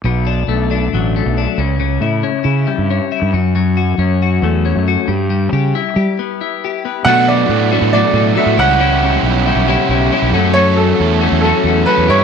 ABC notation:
X:1
M:4/4
L:1/16
Q:1/4=137
K:Bm
V:1 name="Upright piano"
z16 | z16 | z16 | z16 |
f2 d6 d4 e2 f2- | f8- f2 z6 | c2 A6 A4 B2 c2 |]
V:2 name="Clean electric guitar"
B,,2 D2 A,2 D2 F,2 A,2 D2 C,2 | C,2 E2 C2 E2 G,2 C2 E2 F,2 | F,2 F2 C2 F2 A,2 C2 F2 G,2 | G,2 G2 E2 G2 B,2 E2 G2 B,2 |
[B,,F,A,DF]2 [A,DF]4 [A,DF]2 [B,,F,A,DF]2 [A,DF]2 [F,A,DF]2 [C,G,CE]2 | [C,G,CE]2 [G,CE]4 [G,CE]2 [C,G,CE]2 [G,CE]2 [C,G,CE]2 [F,A,CF]2 | [F,A,CF]2 [A,CF]4 [A,CF]2 [F,A,CF]2 [A,CF]2 [F,A,CF]2 [G,B,EG]2 |]
V:3 name="Distorted electric guitar"
z16 | z16 | z16 | z16 |
[F,B,DF]4 [F,B,DF]2 [B,DF]6 [F,B,DF]2 [CEG]2 | [CEG]4 [CEG]2 [EG]6 [CEG]2 [F,A,CA]2 | [F,A,CA]4 [F,A,CA]2 [A,CA]6 [F,A,CA]2 [E,B,EG]2 |]
V:4 name="Fingered electric bass" clef=bass
B,,,4 B,,,4 A,,,3 B,,,2 z C,,2- | C,,2 A,,2 z2 C,2 z G,,2 z2 G,, F,,2- | F,,4 F,,4 E,,3 F,,2 z G,,2- | G,,2 C,2 z2 G, z8 z |
B,,4 A,,3 A,,2 z A,,2 z A,, C,,2- | C,,4 B,,,3 B,,,2 z B,,,2 z B,,, F,,2- | F,,4 E,,3 E,,2 z E,,2 z E,, G,,2 |]